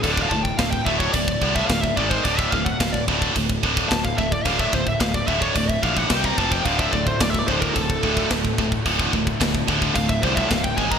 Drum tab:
CC |x---x---x---x---|x---x---x---x---|x---x---x---x---|x---x---x---x---|
SD |----o-------o---|----o-------o---|----o-------o---|----o-------o---|
BD |oooooooooooooooo|oooooooooooooooo|oooooooooooooooo|oooooooooooooooo|

CC |x---x---x---x---|
SD |----o-------o---|
BD |oooooooooooooooo|